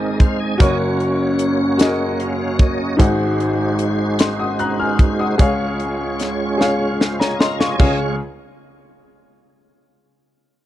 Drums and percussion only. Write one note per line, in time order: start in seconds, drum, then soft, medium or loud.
0.20 kick medium
0.20 closed hi-hat soft
0.60 kick loud
0.60 closed hi-hat medium
1.00 closed hi-hat soft
1.39 closed hi-hat medium
1.79 snare medium
1.79 closed hi-hat medium
2.20 closed hi-hat soft
2.59 kick medium
2.59 closed hi-hat soft
3.00 kick loud
3.00 closed hi-hat medium
3.40 closed hi-hat soft
3.79 closed hi-hat medium
4.19 snare medium
4.19 closed hi-hat medium
4.59 closed hi-hat soft
4.99 kick medium
4.99 closed hi-hat soft
5.39 kick medium
5.39 closed hi-hat medium
5.80 closed hi-hat soft
6.19 snare soft
6.19 closed hi-hat soft
6.61 snare soft
7.01 snare medium
7.21 snare medium
7.41 snare medium
7.61 snare medium
7.79 kick medium
7.79 crash medium